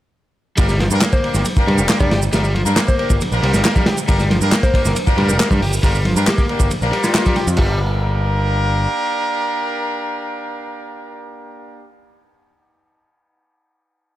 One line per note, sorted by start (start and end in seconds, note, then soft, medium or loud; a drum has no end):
0.57 0.87 G1 loud
0.57 0.67 G3 medium
0.57 0.71 A#3 medium
0.57 0.71 D4 medium
0.57 0.71 G4 medium
0.57 0.71 A#4 loud
0.57 kick loud
0.57 ride medium
0.57 shaker medium
0.69 0.78 G3 medium
0.69 snare soft
0.69 shaker soft
0.79 0.85 F3 medium
0.79 snare soft
0.79 ride medium
0.79 high conga loud
0.91 0.99 G2 loud
0.91 1.03 A#3 medium
0.91 1.03 D4 medium
0.91 1.03 G4 medium
0.91 1.03 A#4 loud
0.91 shaker medium
1.01 1.44 A#3 medium
1.01 snare loud
1.01 clap loud
1.01 ride medium
1.01 shaker medium
1.13 1.30 C5 medium
1.13 kick loud
1.13 shaker soft
1.24 1.44 A#3 medium
1.24 1.44 D4 medium
1.24 1.44 G4 medium
1.24 1.44 A#4 medium
1.24 ride medium
1.34 1.43 G1 medium
1.34 snare soft
1.34 shaker medium
1.45 ride medium
1.45 high conga medium
1.45 shaker medium
1.56 1.98 A#3 medium
1.56 1.98 D4 medium
1.56 1.98 G4 medium
1.56 1.98 A#4 loud
1.56 kick medium
1.56 shaker soft
1.67 1.80 G2 medium
1.67 1.88 G3 medium
1.67 ride medium
1.67 low conga medium
1.78 1.87 F1 medium
1.78 shaker medium
1.89 1.99 A#3 medium
1.89 snare loud
1.89 clap loud
1.89 ride medium
1.89 shaker medium
2.00 2.09 G2 medium
2.00 2.10 G3 loud
2.00 2.13 A#3 medium
2.00 2.13 D4 medium
2.00 2.13 G4 medium
2.00 2.13 A#4 medium
2.00 2.18 D5 medium
2.00 kick medium
2.00 high conga medium
2.00 low conga loud
2.00 shaker soft
2.11 2.28 G1 loud
2.11 2.20 G4 medium
2.11 snare medium
2.11 ride medium
2.22 shaker medium
2.33 2.62 G1 medium
2.33 2.42 G3 medium
2.33 2.46 A#3 loud
2.33 2.46 D4 medium
2.33 2.46 G4 medium
2.33 2.46 A#4 loud
2.33 snare loud
2.33 ride medium
2.33 shaker medium
2.43 2.53 G3 medium
2.43 shaker soft
2.55 2.60 F3 medium
2.55 ride medium
2.55 high conga medium
2.66 2.74 G2 loud
2.66 2.78 A#3 medium
2.66 2.79 D4 medium
2.66 2.78 G4 medium
2.66 2.78 A#4 loud
2.66 shaker medium
2.76 3.20 A#3 medium
2.76 snare loud
2.76 clap loud
2.76 ride medium
2.76 shaker medium
2.88 2.95 C5 medium
2.88 kick medium
2.88 shaker soft
2.98 3.19 A#3 medium
2.98 3.19 D4 medium
2.98 3.19 G4 medium
2.98 3.19 A#4 medium
2.98 3.06 C5 medium
2.98 ride medium
3.10 3.18 G1 medium
3.10 kick medium
3.10 shaker medium
3.21 ride medium
3.21 high conga medium
3.21 shaker medium
3.32 3.40 A#1 loud
3.32 3.73 A#3 medium
3.32 3.73 D4 medium
3.32 3.73 G4 medium
3.32 3.73 A#4 loud
3.32 shaker soft
3.42 3.51 C2 loud
3.42 3.63 G3 medium
3.42 ride medium
3.54 3.62 G1 medium
3.54 snare medium
3.54 shaker medium
3.64 3.74 A#3 medium
3.64 snare loud
3.64 clap loud
3.64 ride medium
3.64 shaker medium
3.75 3.86 G3 loud
3.75 3.88 A#3 medium
3.75 3.88 D4 medium
3.75 3.88 G4 medium
3.75 3.88 A#4 medium
3.75 kick medium
3.75 high conga loud
3.75 shaker soft
3.86 3.96 G4 medium
3.86 snare loud
3.86 ride medium
3.98 ride soft
3.98 shaker medium
4.08 4.37 G1 loud
4.08 4.17 G3 medium
4.08 4.21 A#3 loud
4.08 4.21 D4 medium
4.08 4.21 G4 medium
4.08 4.21 A#4 loud
4.08 kick loud
4.08 ride medium
4.08 shaker medium
4.19 4.28 G3 medium
4.19 snare soft
4.19 shaker soft
4.29 4.35 F3 medium
4.29 snare medium
4.29 ride medium
4.29 high conga loud
4.41 4.50 G2 loud
4.41 4.54 A#3 loud
4.41 4.54 D4 medium
4.41 4.54 G4 medium
4.41 4.54 A#4 loud
4.41 shaker medium
4.51 4.94 A#3 medium
4.51 snare loud
4.51 clap loud
4.51 ride medium
4.51 shaker medium
4.63 4.80 C5 medium
4.63 kick loud
4.63 shaker soft
4.74 4.94 A#3 medium
4.74 4.94 D4 medium
4.74 4.94 G4 medium
4.74 4.94 A#4 medium
4.74 kick medium
4.74 ride medium
4.85 4.93 G1 medium
4.85 snare soft
4.85 shaker medium
4.96 ride medium
4.96 high conga medium
4.96 shaker medium
5.07 5.48 A#3 loud
5.07 5.48 D4 medium
5.07 5.48 G4 medium
5.07 5.48 A#4 loud
5.07 kick medium
5.07 shaker soft
5.17 5.31 G2 medium
5.17 5.38 G3 medium
5.17 ride medium
5.17 low conga medium
5.28 5.37 F1 medium
5.28 5.46 A#4 medium
5.28 shaker medium
5.39 5.49 A#3 medium
5.39 snare loud
5.39 clap loud
5.39 ride medium
5.39 shaker medium
5.50 5.59 G2 medium
5.50 5.61 G3 loud
5.50 5.63 A#3 medium
5.50 5.63 D4 medium
5.50 5.63 G4 medium
5.50 5.63 A#4 medium
5.50 kick medium
5.50 high conga loud
5.50 low conga loud
5.50 shaker soft
5.61 5.78 G1 loud
5.61 5.71 G4 medium
5.61 open hi-hat medium
5.73 shaker medium
5.83 6.12 G1 loud
5.83 5.93 G3 medium
5.83 5.96 A#3 loud
5.83 5.96 D4 medium
5.83 5.96 G4 medium
5.83 5.96 A#4 loud
5.83 kick loud
5.83 ride medium
5.83 shaker medium
5.95 6.04 G3 medium
5.95 shaker soft
6.05 6.11 F3 medium
6.05 ride medium
6.05 high conga loud
6.16 6.24 G2 loud
6.16 6.29 A#3 loud
6.16 6.29 D4 loud
6.16 6.29 G4 medium
6.16 6.29 A#4 loud
6.16 shaker medium
6.27 6.70 A#3 medium
6.27 6.34 G4 medium
6.27 snare loud
6.27 clap loud
6.27 ride medium
6.27 shaker medium
6.38 6.45 G4 medium
6.38 kick loud
6.38 shaker soft
6.49 6.69 A#3 medium
6.49 6.69 D4 medium
6.49 6.69 G4 medium
6.49 6.69 A#4 medium
6.49 ride medium
6.60 6.68 G1 medium
6.60 kick medium
6.60 shaker medium
6.71 ride medium
6.71 high conga medium
6.71 shaker soft
6.82 6.90 A#1 loud
6.82 7.23 A#3 loud
6.82 7.23 D4 medium
6.82 7.23 G4 medium
6.82 7.23 A#4 loud
6.82 shaker soft
6.92 7.13 G3 medium
6.92 ride medium
7.04 7.58 F4 loud
7.04 snare soft
7.04 shaker medium
7.14 7.25 A#3 medium
7.14 snare loud
7.14 clap loud
7.14 ride medium
7.14 shaker medium
7.26 7.36 G3 loud
7.26 7.38 A#3 medium
7.26 7.38 D4 medium
7.26 7.38 G4 medium
7.26 7.38 A#4 medium
7.26 kick medium
7.26 high conga loud
7.26 shaker soft
7.36 7.46 G4 medium
7.36 snare soft
7.36 ride medium
7.47 7.56 F2 medium
7.47 ride soft
7.47 shaker medium
7.57 8.86 G1 loud
7.57 7.79 G3 medium
7.57 11.85 A#3 loud
7.57 11.85 D4 medium
7.57 11.85 G4 medium
7.57 11.85 A#4 loud
7.57 kick loud
7.57 crash medium